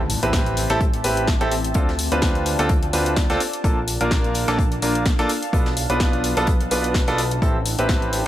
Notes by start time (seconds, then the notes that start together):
Already playing: A1 C4 B4 D5 A5, impact
0.00 G4
0.10 closed hi-hat, open hi-hat
0.18 E5
0.23 A1 C4 E4 G4 B4, closed hi-hat
0.33 kick, snare, closed hi-hat
0.46 closed hi-hat
0.57 closed hi-hat, open hi-hat
0.69 A1 C4 E4 G4 A4, snare, closed hi-hat
0.81 kick, closed hi-hat
0.94 closed hi-hat
1.04 A1 C4 E4 G4 B4, closed hi-hat, open hi-hat
1.17 closed hi-hat
1.28 kick, snare, closed hi-hat
1.41 A1 C4 E4 G4 A4, closed hi-hat
1.52 closed hi-hat, open hi-hat
1.64 closed hi-hat
1.74 D2 C4 D4 F4 A4, kick, closed hi-hat
1.82 D5
1.89 snare
1.97 F4, closed hi-hat, open hi-hat
2.12 D2 C4 D4 F4 B4, closed hi-hat
2.22 kick, snare, closed hi-hat
2.35 closed hi-hat
2.46 closed hi-hat, open hi-hat
2.59 D2 C4 D4 F4 A4, closed hi-hat
2.69 kick, closed hi-hat
2.83 closed hi-hat
2.93 D2 C4 D4 F4 B4, closed hi-hat, open hi-hat
3.06 closed hi-hat
3.16 kick, snare, closed hi-hat
3.30 D2 C4 D4 F4 A4, snare, closed hi-hat
3.40 D4, closed hi-hat, open hi-hat
3.53 A#4, closed hi-hat
3.64 A#1 A#3 D4 F4 A4, kick, closed hi-hat
3.81 F5
3.88 closed hi-hat, open hi-hat
4.01 A#1 A#3 D4 F4 A#4, closed hi-hat
4.11 kick, snare, closed hi-hat
4.24 closed hi-hat
4.34 closed hi-hat, open hi-hat
4.48 A#1 A#3 D4 F4 A4, snare, closed hi-hat
4.59 kick, closed hi-hat
4.72 closed hi-hat
4.82 A#1 A#3 D4 F4 A#4, closed hi-hat, open hi-hat
4.95 closed hi-hat
5.05 kick, snare, closed hi-hat
5.19 A#1 A#3 D4 F4 A4, closed hi-hat
5.29 closed hi-hat, open hi-hat
5.43 B4, closed hi-hat
5.53 B1 B3 D4 F4 A4, kick, closed hi-hat
5.66 snare
5.77 closed hi-hat, open hi-hat
5.90 B1 B3 D4 F4 B4, closed hi-hat
6.00 kick, snare, closed hi-hat
6.13 closed hi-hat
6.24 closed hi-hat, open hi-hat
6.37 B1 B3 D4 F4 A4, closed hi-hat
6.47 kick, closed hi-hat
6.61 closed hi-hat
6.71 B1 B3 D4 F4 B4, closed hi-hat, open hi-hat
6.84 closed hi-hat
6.94 kick, snare, closed hi-hat
7.07 B1 B3 D4 F4 A4, snare, closed hi-hat
7.18 closed hi-hat, open hi-hat
7.31 closed hi-hat
7.42 A1 C4 E4 G4 A4, kick, closed hi-hat
7.49 G4
7.65 closed hi-hat, open hi-hat
7.79 A1 C4 E4 G4 B4, closed hi-hat
7.83 E5
7.89 kick, snare, closed hi-hat
8.02 closed hi-hat
8.13 closed hi-hat, open hi-hat